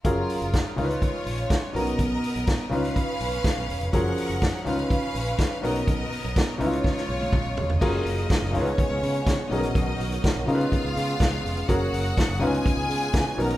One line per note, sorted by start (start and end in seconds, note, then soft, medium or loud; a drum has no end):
0.04 0.22 F#1 loud
0.04 0.77 F#3 medium
0.04 0.76 C#4 medium
0.04 0.77 F4 medium
0.04 0.78 G#4 medium
0.04 0.76 A#4 medium
0.04 0.78 A#4 medium
0.04 kick medium
0.04 closed hi-hat medium
0.29 open hi-hat medium
0.42 0.59 F#1 medium
0.42 closed hi-hat soft
0.53 kick loud
0.53 snare loud
0.53 closed hi-hat medium
0.76 0.95 C#2 loud
0.76 1.72 C#3 medium
0.76 1.73 G#3 medium
0.76 1.73 C#4 medium
0.76 1.73 D#4 medium
0.76 1.73 F4 medium
0.76 0.84 A#4 medium
0.76 1.73 C#5 medium
0.76 open hi-hat soft
0.85 1.77 B4 medium
0.90 closed hi-hat soft
1.02 kick medium
1.02 closed hi-hat soft
1.26 1.44 A#1 medium
1.26 open hi-hat medium
1.38 closed hi-hat soft
1.50 kick loud
1.50 snare medium
1.50 closed hi-hat medium
1.73 1.92 B1 medium
1.73 2.69 B2 medium
1.73 2.70 B3 medium
1.73 2.69 C#4 medium
1.73 2.69 D#4 medium
1.73 2.70 A#4 medium
1.73 2.71 A#4 medium
1.73 2.70 D#5 medium
1.73 open hi-hat medium
1.87 closed hi-hat soft
1.99 2.17 B1 loud
1.99 kick medium
1.99 closed hi-hat medium
2.24 open hi-hat medium
2.36 2.53 B1 medium
2.36 closed hi-hat soft
2.47 kick loud
2.47 snare loud
2.47 closed hi-hat medium
2.69 2.89 C#2 medium
2.69 3.90 C#3 medium
2.69 3.90 C#4 medium
2.69 3.91 C#4 medium
2.69 3.90 D#4 medium
2.69 3.91 F4 medium
2.69 3.90 B4 medium
2.69 3.91 B4 medium
2.69 3.91 F5 medium
2.69 open hi-hat soft
2.85 closed hi-hat soft
2.96 kick medium
2.96 closed hi-hat soft
3.20 3.38 B1 medium
3.20 open hi-hat medium
3.32 closed hi-hat soft
3.44 kick loud
3.44 snare loud
3.44 closed hi-hat medium
3.57 3.66 B1 medium
3.69 3.78 E1 medium
3.69 open hi-hat medium
3.81 3.90 F1 medium
3.81 closed hi-hat soft
3.93 4.11 F#1 loud
3.93 4.66 F3 medium
3.93 4.66 F#3 medium
3.93 4.64 C#4 medium
3.93 4.66 G#4 medium
3.93 4.65 A#4 medium
3.93 4.67 A#4 medium
3.93 4.64 F#5 medium
3.93 kick medium
3.93 closed hi-hat medium
4.18 open hi-hat medium
4.29 4.47 F#1 medium
4.29 closed hi-hat soft
4.42 kick loud
4.42 snare loud
4.42 closed hi-hat medium
4.65 4.84 C#2 loud
4.65 5.60 C#3 medium
4.65 5.61 C#4 medium
4.65 5.61 D#4 medium
4.65 5.61 F4 medium
4.65 5.61 B4 medium
4.65 5.62 B4 medium
4.65 5.61 F5 medium
4.65 open hi-hat soft
4.79 closed hi-hat soft
4.90 kick medium
4.90 closed hi-hat soft
5.15 5.32 A#1 medium
5.15 open hi-hat medium
5.26 closed hi-hat soft
5.38 kick loud
5.38 snare loud
5.38 closed hi-hat medium
5.62 5.81 B1 medium
5.62 6.57 B2 medium
5.62 6.58 B3 medium
5.62 6.57 C#4 medium
5.62 6.58 D#4 medium
5.62 6.58 A#4 medium
5.62 6.59 A#4 medium
5.62 6.58 D#5 medium
5.62 open hi-hat medium
5.76 closed hi-hat soft
5.88 6.05 B1 loud
5.88 kick medium
5.88 closed hi-hat medium
6.12 open hi-hat medium
6.24 6.42 B1 medium
6.24 closed hi-hat soft
6.36 kick loud
6.36 snare loud
6.36 closed hi-hat medium
6.58 6.78 C#2 loud
6.58 7.78 C#3 medium
6.58 7.78 G#3 medium
6.58 7.78 C#4 medium
6.58 7.79 D#4 medium
6.58 6.66 E4 medium
6.58 7.78 F4 medium
6.58 7.79 B4 medium
6.58 7.78 C#5 medium
6.58 open hi-hat medium
6.66 7.80 F4 medium
6.73 closed hi-hat soft
6.84 kick medium
6.84 snare soft
6.97 snare soft
7.09 7.26 B1 medium
7.21 high tom medium
7.33 kick loud
7.33 mid tom medium
7.45 7.54 B1 medium
7.57 7.66 E1 medium
7.57 floor tom medium
7.70 7.78 F1 medium
7.70 floor tom medium
7.80 7.99 F#1 loud
7.80 9.49 C#3 medium
7.80 8.54 F#3 medium
7.80 8.53 F#3 medium
7.80 8.54 A#3 medium
7.80 8.51 C#4 medium
7.80 8.52 D#4 medium
7.80 8.53 F4 medium
7.80 9.49 F4 medium
7.80 8.54 G#4 medium
7.80 8.54 A#4 medium
7.80 8.52 D#5 medium
7.80 kick loud
7.80 crash medium
8.06 8.23 F#1 medium
8.06 open hi-hat medium
8.18 closed hi-hat soft
8.30 kick loud
8.30 snare loud
8.30 closed hi-hat medium
8.42 8.56 F#1 loud
8.52 8.72 C#2 loud
8.52 9.48 C#3 medium
8.52 9.50 G#3 medium
8.52 11.66 B3 medium
8.52 9.48 C#4 medium
8.52 9.49 D#4 medium
8.52 9.49 F4 medium
8.52 8.60 A#4 medium
8.52 9.48 C#5 medium
8.52 open hi-hat medium
8.61 9.52 B4 medium
8.67 closed hi-hat soft
8.78 kick loud
8.78 closed hi-hat soft
8.90 8.99 C#2 medium
9.03 9.20 C#3 medium
9.03 open hi-hat medium
9.14 closed hi-hat soft
9.26 9.36 C#3 medium
9.26 kick loud
9.26 snare loud
9.26 closed hi-hat medium
9.49 9.63 B1 loud
9.49 10.45 B2 medium
9.49 10.47 D#3 medium
9.49 10.47 F#3 medium
9.49 10.45 B3 medium
9.49 10.45 C#4 medium
9.49 10.46 D#4 medium
9.49 10.47 F#4 medium
9.49 9.57 G#4 medium
9.49 10.47 A#4 medium
9.49 10.46 D#5 medium
9.49 open hi-hat medium
9.58 10.48 A#4 medium
9.63 9.72 A#1 medium
9.63 closed hi-hat soft
9.75 9.93 B1 loud
9.75 kick loud
9.75 closed hi-hat medium
10.00 10.17 B1 medium
10.00 open hi-hat medium
10.12 closed hi-hat soft
10.24 kick loud
10.24 snare loud
10.24 closed hi-hat medium
10.36 10.45 B1 medium
10.46 11.65 C#3 medium
10.46 12.39 C#3 medium
10.46 10.65 C#3 medium
10.46 11.68 G#3 medium
10.46 11.66 C#4 medium
10.46 11.66 D#4 medium
10.46 11.66 F4 medium
10.46 11.67 F4 medium
10.46 12.40 G#4 medium
10.46 10.54 A#4 medium
10.46 11.66 F5 medium
10.46 open hi-hat medium
10.55 11.70 B4 medium
10.61 closed hi-hat soft
10.72 kick medium
10.72 closed hi-hat soft
10.84 10.93 C#2 medium
10.97 11.14 C#3 medium
10.97 open hi-hat medium
11.08 closed hi-hat soft
11.20 11.38 C#2 medium
11.20 kick loud
11.20 snare loud
11.20 closed hi-hat medium
11.44 11.62 F1 medium
11.44 open hi-hat soft
11.57 closed hi-hat soft
11.68 11.87 F#1 loud
11.68 12.41 F#3 medium
11.68 12.41 A#3 medium
11.68 12.38 C#4 medium
11.68 12.40 F#4 medium
11.68 12.41 F#4 medium
11.68 12.41 G#4 medium
11.68 12.42 A#4 medium
11.68 12.40 F#5 medium
11.68 kick medium
11.68 closed hi-hat medium
11.93 12.10 F#1 loud
11.93 open hi-hat medium
12.06 closed hi-hat soft
12.17 kick loud
12.17 snare loud
12.17 closed hi-hat medium
12.29 12.42 F#1 loud
12.39 12.59 C#2 loud
12.39 13.35 C#3 medium
12.39 13.37 C#3 medium
12.39 13.37 G#3 medium
12.39 13.57 B3 medium
12.39 13.35 C#4 medium
12.39 13.36 D#4 medium
12.39 13.36 F4 medium
12.39 13.37 F4 medium
12.39 13.36 G#4 medium
12.39 13.37 B4 medium
12.39 13.36 G#5 medium
12.39 open hi-hat soft
12.54 closed hi-hat soft
12.66 kick loud
12.66 closed hi-hat medium
12.77 12.86 C#2 medium
12.89 13.07 C#3 medium
12.89 open hi-hat medium
13.01 closed hi-hat soft
13.14 13.23 C#3 medium
13.14 kick loud
13.14 snare loud
13.14 closed hi-hat medium
13.36 13.50 B1 medium
13.36 13.57 B2 medium
13.36 13.57 D#3 medium
13.36 13.57 F#3 medium
13.36 13.57 B3 medium
13.36 13.57 C#4 medium
13.36 13.57 D#4 medium
13.36 13.57 F#4 medium
13.36 13.57 A#4 medium
13.36 13.57 A#5 medium
13.36 open hi-hat medium
13.50 13.57 A#1 medium
13.50 closed hi-hat medium